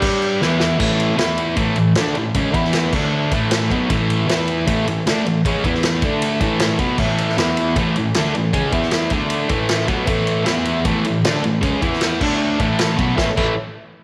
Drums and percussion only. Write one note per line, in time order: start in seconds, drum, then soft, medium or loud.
0.02 kick loud
0.02 crash loud
0.22 crash medium
0.42 snare medium
0.60 snare loud
0.80 kick loud
0.80 crash loud
1.00 ride medium
1.19 snare loud
1.19 ride medium
1.38 ride medium
1.57 kick loud
1.57 ride medium
1.76 ride medium
1.95 snare loud
1.95 ride loud
2.15 ride medium
2.34 kick loud
2.34 ride loud
2.54 kick loud
2.54 ride medium
2.64 snare soft
2.73 snare loud
2.73 ride loud
2.93 kick loud
2.93 crash loud
3.31 kick loud
3.31 ride medium
3.51 snare loud
3.51 ride loud
3.71 kick medium
3.71 ride medium
3.90 kick loud
3.90 ride loud
4.10 ride medium
4.29 snare loud
4.29 ride loud
4.48 ride medium
4.67 kick loud
4.67 ride loud
4.88 ride medium
5.07 snare loud
5.07 ride medium
5.26 ride medium
5.45 kick loud
5.45 ride medium
5.64 kick loud
5.64 ride medium
5.74 snare soft
5.83 snare loud
5.83 ride medium
6.02 kick loud
6.02 ride medium
6.22 ride loud
6.41 kick loud
6.41 ride medium
6.60 snare loud
6.60 ride loud
6.79 kick loud
6.79 ride medium
6.98 kick loud
6.98 crash loud
7.18 ride medium
7.29 snare soft
7.38 snare loud
7.38 ride medium
7.57 ride medium
7.76 kick loud
7.76 ride loud
7.96 ride medium
8.14 snare loud
8.14 ride medium
8.35 ride medium
8.53 kick loud
8.53 ride medium
8.72 kick loud
8.72 ride medium
8.82 snare soft
8.91 snare loud
8.91 ride medium
9.10 kick loud
9.10 ride medium
9.30 ride loud
9.49 kick loud
9.49 ride medium
9.69 snare loud
9.69 ride medium
9.88 kick loud
9.88 ride medium
10.07 kick loud
10.07 ride loud
10.27 ride medium
10.46 snare loud
10.46 ride loud
10.65 ride medium
10.85 kick loud
10.85 ride loud
11.05 ride medium
11.25 snare loud
11.25 ride loud
11.44 ride medium
11.63 kick loud
11.63 ride medium
11.82 kick loud
11.82 ride medium
11.93 snare soft
12.01 snare loud
12.01 ride loud
12.21 kick loud
12.21 crash loud
12.60 kick loud
12.60 ride medium
12.79 snare loud
12.79 ride loud
12.99 kick loud
12.99 ride medium
13.18 kick loud
13.18 snare medium
13.37 kick loud
13.37 crash medium